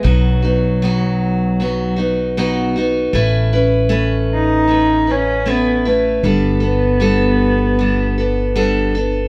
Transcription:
<<
  \new Staff \with { instrumentName = "Steel-string acoustic guitar" } { \time 4/4 \key b \mixolydian \tempo 4 = 78 <b, fis b dis' fis'>8 <b dis' fis'>8 <b, fis b dis' fis'>4 <fis b dis' fis'>8 <b dis' fis'>8 <b, fis b dis' fis'>8 <b dis' fis'>8 | <a cis' e' b'>8 <cis' e' b'>8 <a cis' b'>4 <a cis' b'>8 <cis' e' b'>8 <a cis' e' b'>8 <cis' e' b'>8 | <g b d' a'>8 <b d' a'>8 <g b d' a'>4 <g b d' a'>8 <b d' a'>8 <g b d' a'>8 <b d' a'>8 | }
  \new Staff \with { instrumentName = "Cello" } { \time 4/4 \key b \mixolydian fis2.~ fis8 r8 | r4. dis'4 cis'8 b8 a8 | b2.~ b8 r8 | }
  \new Staff \with { instrumentName = "Upright bass" } { \clef bass \time 4/4 \key b \mixolydian b,,1 | a,,1 | g,,1 | }
>>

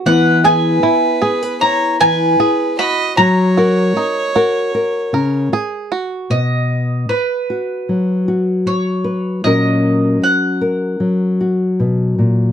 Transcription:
<<
  \new Staff \with { instrumentName = "Mandolin" } { \time 4/4 \key b \major \tempo 4 = 77 fis''8 gis''4. ais''8 gis''4 b''8 | ais''2. r4 | dis''4 b'2 cis''4 | dis''4 fis''2~ fis''8 r8 | }
  \new Staff \with { instrumentName = "Fiddle" } { \time 4/4 \key b \major b'8 b'4. cis''8 b'4 dis''8 | cis''2. r4 | r1 | r1 | }
  \new Staff \with { instrumentName = "Five-string banjo" } { \time 4/4 \key b \major r8 gis'8 e'8 gis'4 ais''8 gis'8 fis'8 | r8 fis'8 dis'8 fis'4 ais'8 gis'8 fis'8 | r1 | r1 | }
  \new Staff \with { instrumentName = "Nylon-string guitar" } { \time 4/4 \key b \major << { <b gis'>8 e'4 gis'16 b'16 e'2 | fis'8 ais'4 ais'8 ais'2 | r4. fis'4 fis'4 b'8 | <fis cis' fis' ais'>4. ais'4 fis'4. | } \\ { e4 r4. e8 r4 | fis4 r4. cis8 r4 | b,4 r4 fis2 | ais,4 r4 fis4 b,8 ais,8 | } >> }
>>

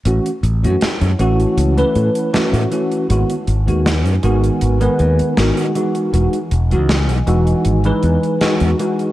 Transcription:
<<
  \new Staff \with { instrumentName = "Ambient pad" } { \time 4/4 \key a \lydian \tempo 4 = 79 << { <e' cis'' a''>1 | <dis' b' gis''>2.~ <dis' b' gis''>8 <e dis'' gis''>8~ | <e dis'' gis''>1 | } \\ { fis''1 | fis''1~ | fis''1 | } >> }
  \new Staff \with { instrumentName = "Tine electric piano" } { \time 4/4 \key a \lydian <e a cis' fis'>16 r8 <e a cis' fis'>16 r8 <e a cis' fis'>8. <e a cis' b'>8. <e a cis' fis'>8 <e a cis' fis'>8 | <dis gis b fis'>16 r8 <dis gis b fis'>16 r8 <dis gis b fis'>8. <dis gis b b'>8. <dis gis b fis'>8 <e gis dis' fis'>8 | <e gis dis' fis'>16 r8 <e gis dis' fis'>16 r8 <e gis dis' fis'>8. <e gis dis' b'>8. <e gis dis' fis'>8 <e gis dis' fis'>8 | }
  \new Staff \with { instrumentName = "Fingered electric bass" } { \clef bass \time 4/4 \key a \lydian a,,16 r16 a,,16 fis,16 r16 fis,16 a,,16 r16 cis,16 r16 a,16 r8 a,16 r8 | gis,,16 r16 gis,,16 dis,8 fis,16 gis,,16 r16 gis,,16 r16 dis,16 r16 gis,,16 r8. | e,,16 r16 e,,16 cis,8 b,,16 e,,16 r16 gis,,16 r16 e,16 r8 e,16 r8 | }
  \new DrumStaff \with { instrumentName = "Drums" } \drummode { \time 4/4 hh16 hh16 hh16 hh16 <hh sn>16 hh16 hh16 hh16 hh16 hh16 hh16 hh16 <hh sn>16 hh16 hh16 hh16 | hh16 hh16 hh16 hh16 <hh sn>16 hh16 hh16 hh16 hh16 hh16 hh16 hh16 <hh sn>16 hh16 hh16 hh16 | hh16 hh16 hh16 hh16 <hh sn>16 hh16 hh16 hh16 hh16 hh16 hh16 hh16 <hh sn>16 hh16 hh16 hh16 | }
>>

